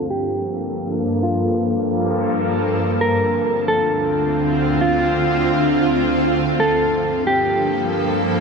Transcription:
0, 0, Header, 1, 3, 480
1, 0, Start_track
1, 0, Key_signature, -2, "minor"
1, 0, Tempo, 447761
1, 1075, Time_signature, 4, 2, 24, 8
1, 9006, End_track
2, 0, Start_track
2, 0, Title_t, "Clean electric guitar"
2, 0, Program_c, 0, 27
2, 112, Note_on_c, 0, 67, 70
2, 1031, Note_off_c, 0, 67, 0
2, 1318, Note_on_c, 0, 65, 67
2, 2474, Note_off_c, 0, 65, 0
2, 3228, Note_on_c, 0, 70, 78
2, 3909, Note_off_c, 0, 70, 0
2, 3947, Note_on_c, 0, 69, 78
2, 4868, Note_off_c, 0, 69, 0
2, 5159, Note_on_c, 0, 65, 82
2, 6314, Note_off_c, 0, 65, 0
2, 7074, Note_on_c, 0, 69, 82
2, 7752, Note_off_c, 0, 69, 0
2, 7792, Note_on_c, 0, 67, 76
2, 8711, Note_off_c, 0, 67, 0
2, 9006, End_track
3, 0, Start_track
3, 0, Title_t, "Ambient pad"
3, 0, Program_c, 1, 92
3, 0, Note_on_c, 1, 43, 79
3, 0, Note_on_c, 1, 53, 76
3, 0, Note_on_c, 1, 58, 75
3, 0, Note_on_c, 1, 69, 92
3, 2957, Note_off_c, 1, 43, 0
3, 2957, Note_off_c, 1, 53, 0
3, 2957, Note_off_c, 1, 58, 0
3, 2957, Note_off_c, 1, 69, 0
3, 2995, Note_on_c, 1, 38, 83
3, 2995, Note_on_c, 1, 50, 79
3, 2995, Note_on_c, 1, 60, 75
3, 2995, Note_on_c, 1, 65, 93
3, 6797, Note_off_c, 1, 38, 0
3, 6797, Note_off_c, 1, 50, 0
3, 6797, Note_off_c, 1, 60, 0
3, 6797, Note_off_c, 1, 65, 0
3, 6835, Note_on_c, 1, 53, 78
3, 6835, Note_on_c, 1, 58, 77
3, 6836, Note_on_c, 1, 43, 84
3, 6836, Note_on_c, 1, 69, 94
3, 9006, Note_off_c, 1, 43, 0
3, 9006, Note_off_c, 1, 53, 0
3, 9006, Note_off_c, 1, 58, 0
3, 9006, Note_off_c, 1, 69, 0
3, 9006, End_track
0, 0, End_of_file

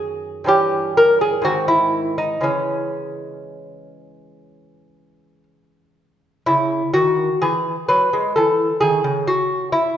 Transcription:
0, 0, Header, 1, 2, 480
1, 0, Start_track
1, 0, Key_signature, 4, "minor"
1, 0, Tempo, 940439
1, 738, Tempo, 1005025
1, 1211, Time_signature, 4, 2, 24, 8
1, 3138, Tempo, 931677
1, 4941, End_track
2, 0, Start_track
2, 0, Title_t, "Lute"
2, 0, Program_c, 0, 24
2, 0, Note_on_c, 0, 42, 55
2, 0, Note_on_c, 0, 51, 42
2, 0, Note_on_c, 0, 61, 39
2, 0, Note_on_c, 0, 68, 91
2, 222, Note_off_c, 0, 42, 0
2, 225, Note_off_c, 0, 51, 0
2, 226, Note_on_c, 0, 43, 50
2, 229, Note_off_c, 0, 61, 0
2, 229, Note_off_c, 0, 68, 0
2, 235, Note_on_c, 0, 52, 43
2, 241, Note_on_c, 0, 61, 43
2, 247, Note_on_c, 0, 67, 73
2, 482, Note_off_c, 0, 67, 0
2, 497, Note_on_c, 0, 70, 77
2, 617, Note_off_c, 0, 70, 0
2, 619, Note_on_c, 0, 68, 73
2, 709, Note_off_c, 0, 43, 0
2, 713, Note_off_c, 0, 52, 0
2, 717, Note_off_c, 0, 61, 0
2, 723, Note_on_c, 0, 44, 52
2, 732, Note_on_c, 0, 51, 41
2, 738, Note_on_c, 0, 60, 41
2, 739, Note_off_c, 0, 68, 0
2, 739, Note_on_c, 0, 66, 76
2, 848, Note_off_c, 0, 66, 0
2, 850, Note_on_c, 0, 64, 71
2, 1079, Note_off_c, 0, 64, 0
2, 1089, Note_on_c, 0, 63, 59
2, 1189, Note_off_c, 0, 44, 0
2, 1193, Note_off_c, 0, 51, 0
2, 1196, Note_off_c, 0, 60, 0
2, 1196, Note_on_c, 0, 49, 39
2, 1198, Note_on_c, 0, 52, 33
2, 1208, Note_on_c, 0, 56, 35
2, 1210, Note_off_c, 0, 63, 0
2, 1211, Note_on_c, 0, 61, 58
2, 2641, Note_off_c, 0, 61, 0
2, 3110, Note_off_c, 0, 49, 0
2, 3111, Note_off_c, 0, 52, 0
2, 3116, Note_off_c, 0, 56, 0
2, 3135, Note_on_c, 0, 64, 73
2, 3138, Note_on_c, 0, 49, 50
2, 3314, Note_off_c, 0, 49, 0
2, 3371, Note_off_c, 0, 64, 0
2, 3377, Note_on_c, 0, 66, 71
2, 3382, Note_on_c, 0, 51, 55
2, 3556, Note_off_c, 0, 51, 0
2, 3611, Note_off_c, 0, 66, 0
2, 3625, Note_on_c, 0, 68, 76
2, 3628, Note_on_c, 0, 52, 55
2, 3798, Note_off_c, 0, 52, 0
2, 3852, Note_off_c, 0, 68, 0
2, 3866, Note_on_c, 0, 71, 73
2, 3870, Note_on_c, 0, 54, 56
2, 3978, Note_off_c, 0, 54, 0
2, 3994, Note_on_c, 0, 56, 48
2, 4091, Note_off_c, 0, 71, 0
2, 4099, Note_off_c, 0, 56, 0
2, 4110, Note_on_c, 0, 69, 57
2, 4117, Note_on_c, 0, 52, 55
2, 4282, Note_off_c, 0, 52, 0
2, 4333, Note_off_c, 0, 69, 0
2, 4341, Note_on_c, 0, 68, 74
2, 4348, Note_on_c, 0, 51, 52
2, 4457, Note_off_c, 0, 51, 0
2, 4463, Note_on_c, 0, 49, 56
2, 4570, Note_off_c, 0, 68, 0
2, 4583, Note_on_c, 0, 66, 73
2, 4810, Note_off_c, 0, 66, 0
2, 4814, Note_on_c, 0, 64, 75
2, 4892, Note_off_c, 0, 49, 0
2, 4941, Note_off_c, 0, 64, 0
2, 4941, End_track
0, 0, End_of_file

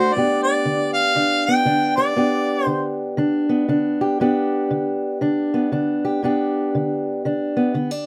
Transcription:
0, 0, Header, 1, 3, 480
1, 0, Start_track
1, 0, Key_signature, 1, "major"
1, 0, Tempo, 508044
1, 126, Time_signature, 4, 2, 24, 8
1, 7616, End_track
2, 0, Start_track
2, 0, Title_t, "Harmonica"
2, 0, Program_c, 0, 22
2, 0, Note_on_c, 0, 72, 81
2, 126, Note_on_c, 0, 74, 79
2, 140, Note_off_c, 0, 72, 0
2, 399, Note_off_c, 0, 74, 0
2, 405, Note_on_c, 0, 74, 82
2, 859, Note_off_c, 0, 74, 0
2, 879, Note_on_c, 0, 77, 97
2, 1336, Note_off_c, 0, 77, 0
2, 1374, Note_on_c, 0, 79, 99
2, 1824, Note_off_c, 0, 79, 0
2, 1855, Note_on_c, 0, 74, 82
2, 2507, Note_off_c, 0, 74, 0
2, 2507, Note_on_c, 0, 72, 82
2, 2781, Note_off_c, 0, 72, 0
2, 7616, End_track
3, 0, Start_track
3, 0, Title_t, "Steel-string acoustic guitar"
3, 0, Program_c, 1, 25
3, 0, Note_on_c, 1, 50, 66
3, 0, Note_on_c, 1, 57, 68
3, 0, Note_on_c, 1, 62, 68
3, 0, Note_on_c, 1, 66, 72
3, 95, Note_off_c, 1, 50, 0
3, 110, Note_off_c, 1, 57, 0
3, 111, Note_off_c, 1, 62, 0
3, 115, Note_off_c, 1, 66, 0
3, 150, Note_on_c, 1, 43, 72
3, 155, Note_on_c, 1, 59, 61
3, 165, Note_on_c, 1, 62, 55
3, 171, Note_on_c, 1, 67, 60
3, 581, Note_off_c, 1, 43, 0
3, 617, Note_on_c, 1, 50, 61
3, 1054, Note_off_c, 1, 50, 0
3, 1089, Note_on_c, 1, 50, 66
3, 1091, Note_off_c, 1, 62, 0
3, 1095, Note_on_c, 1, 62, 62
3, 1397, Note_off_c, 1, 59, 0
3, 1401, Note_on_c, 1, 59, 58
3, 1530, Note_off_c, 1, 50, 0
3, 1563, Note_on_c, 1, 50, 60
3, 1567, Note_off_c, 1, 62, 0
3, 1571, Note_on_c, 1, 62, 58
3, 1863, Note_off_c, 1, 67, 0
3, 1867, Note_on_c, 1, 67, 65
3, 2006, Note_off_c, 1, 50, 0
3, 2039, Note_on_c, 1, 43, 67
3, 2040, Note_off_c, 1, 59, 0
3, 2043, Note_on_c, 1, 59, 57
3, 2044, Note_off_c, 1, 62, 0
3, 2047, Note_on_c, 1, 62, 54
3, 2053, Note_off_c, 1, 67, 0
3, 2057, Note_on_c, 1, 67, 64
3, 2484, Note_off_c, 1, 43, 0
3, 2519, Note_on_c, 1, 50, 58
3, 2964, Note_off_c, 1, 50, 0
3, 2997, Note_on_c, 1, 50, 67
3, 3002, Note_off_c, 1, 62, 0
3, 3005, Note_on_c, 1, 62, 62
3, 3296, Note_off_c, 1, 59, 0
3, 3300, Note_on_c, 1, 59, 61
3, 3444, Note_off_c, 1, 50, 0
3, 3481, Note_on_c, 1, 50, 64
3, 3484, Note_off_c, 1, 62, 0
3, 3488, Note_on_c, 1, 62, 58
3, 3785, Note_off_c, 1, 67, 0
3, 3789, Note_on_c, 1, 67, 66
3, 3926, Note_off_c, 1, 50, 0
3, 3967, Note_on_c, 1, 43, 72
3, 3973, Note_off_c, 1, 62, 0
3, 3974, Note_off_c, 1, 59, 0
3, 3977, Note_on_c, 1, 62, 60
3, 3978, Note_on_c, 1, 59, 56
3, 3979, Note_off_c, 1, 67, 0
3, 3983, Note_on_c, 1, 67, 68
3, 4409, Note_off_c, 1, 43, 0
3, 4446, Note_on_c, 1, 50, 60
3, 4889, Note_off_c, 1, 50, 0
3, 4923, Note_on_c, 1, 50, 65
3, 4925, Note_off_c, 1, 62, 0
3, 4929, Note_on_c, 1, 62, 63
3, 5222, Note_off_c, 1, 59, 0
3, 5233, Note_on_c, 1, 59, 58
3, 5367, Note_off_c, 1, 50, 0
3, 5396, Note_off_c, 1, 62, 0
3, 5404, Note_on_c, 1, 50, 62
3, 5410, Note_on_c, 1, 62, 57
3, 5709, Note_off_c, 1, 67, 0
3, 5712, Note_on_c, 1, 67, 65
3, 5849, Note_off_c, 1, 50, 0
3, 5864, Note_off_c, 1, 62, 0
3, 5867, Note_off_c, 1, 59, 0
3, 5883, Note_on_c, 1, 43, 68
3, 5892, Note_on_c, 1, 59, 56
3, 5897, Note_on_c, 1, 62, 55
3, 5902, Note_off_c, 1, 67, 0
3, 5906, Note_on_c, 1, 67, 64
3, 6328, Note_off_c, 1, 43, 0
3, 6376, Note_on_c, 1, 50, 60
3, 6814, Note_off_c, 1, 50, 0
3, 6846, Note_off_c, 1, 62, 0
3, 6851, Note_on_c, 1, 50, 64
3, 6857, Note_on_c, 1, 62, 60
3, 7136, Note_off_c, 1, 59, 0
3, 7148, Note_on_c, 1, 59, 56
3, 7291, Note_off_c, 1, 50, 0
3, 7306, Note_off_c, 1, 59, 0
3, 7315, Note_on_c, 1, 50, 61
3, 7317, Note_off_c, 1, 62, 0
3, 7321, Note_on_c, 1, 59, 59
3, 7473, Note_off_c, 1, 59, 0
3, 7473, Note_on_c, 1, 62, 47
3, 7616, Note_off_c, 1, 50, 0
3, 7616, Note_off_c, 1, 62, 0
3, 7616, Note_off_c, 1, 67, 0
3, 7616, End_track
0, 0, End_of_file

